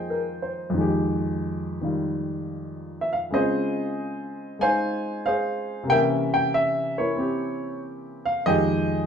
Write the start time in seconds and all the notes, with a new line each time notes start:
Already playing: F2 D#3 F3 G#3 A#3 G#4 C5 D#5 G5
0.10 A#4
0.42 C5
0.70 F2 D#3
0.78 G#3 G4
1.81 D#3 G3 F4
3.01 E5
3.13 F5
3.30 C#3 G#3 C4 G#4 D#5
3.34 F4 C5
4.59 G#3 D#4 C5 F5 G#5
5.26 G#4 C5 F5
5.83 C3 A#3
5.90 C#4 A#4 E5 G5
5.94 E3
6.34 G5
6.54 E5
6.98 E4 A#4 C#5
7.16 C4 G4
8.26 F5
8.46 F2 D#3 G#3 G4 G#4 D#5 G5